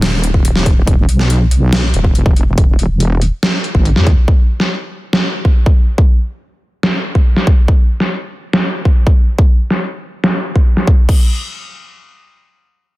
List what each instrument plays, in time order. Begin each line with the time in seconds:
Already playing: wobble bass D#1
0.02 snare, closed hi-hat
0.24 closed hi-hat
0.34 kick
0.45 closed hi-hat
0.56 snare
0.66 kick, closed hi-hat
0.77 wobble bass E1
0.87 wobble bass E1, kick, closed hi-hat
1.09 wobble bass B1, closed hi-hat
1.19 snare
1.30 closed hi-hat
1.51 closed hi-hat
1.73 snare, closed hi-hat
1.94 wobble bass E1, closed hi-hat
2.04 kick
2.15 wobble bass E1, closed hi-hat
2.26 kick
2.36 closed hi-hat
2.58 wobble bass E1, kick, closed hi-hat
2.79 closed hi-hat
2.90 wobble bass E1
3.00 closed hi-hat
3.22 closed hi-hat
3.43 snare, closed hi-hat
3.64 closed hi-hat
3.75 wobble bass G#1, kick
3.85 closed hi-hat
3.96 wobble bass E2, snare
4.07 kick, closed hi-hat
4.28 kick
4.60 snare
5.13 snare
5.45 kick
5.66 kick
5.98 kick
6.83 snare
7.15 kick
7.36 snare
7.47 kick
7.68 kick
8.00 snare
8.53 snare
8.85 kick
9.07 kick
9.38 kick
9.70 snare
10.24 snare
10.56 kick
10.77 snare
10.87 kick
11.09 kick, crash